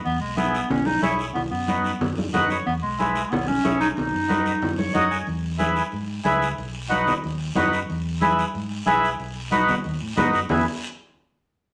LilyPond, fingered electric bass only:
\new Staff \with { instrumentName = "Fingered electric bass" } { \clef bass \time 4/4 \key e \major \tempo 4 = 184 e,8 b,,4. b,,4 b,,4 | b,,8 fis,4. fis,4 fis,4 | e,8 b,,4. b,,4 b,,4 | b,,8 fis,4. fis,4 fis,4 |
e,2 gis,4 cis,4 | b,,2 dis,4 fis,4 | e,2 gis,4 b,,4 | b,,2 dis,8 a,8 gis,8 fis,8 |
e,8 r2. r8 | }